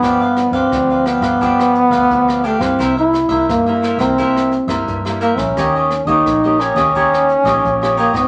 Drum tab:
HH |x-xxx-x-xxxxx-xx|xxxxx-xxxxxxxxx-|x-xxx-xxxxxxx-xx|
SD |r-r-r-rr-r-r-r-r|r-r-r-rr-r-r-r-r|r-r-r-rr-r-r-r-r|
BD |o--oo--oo--oo--o|o--oo--oo--oo--o|o--oo--oo--oo--o|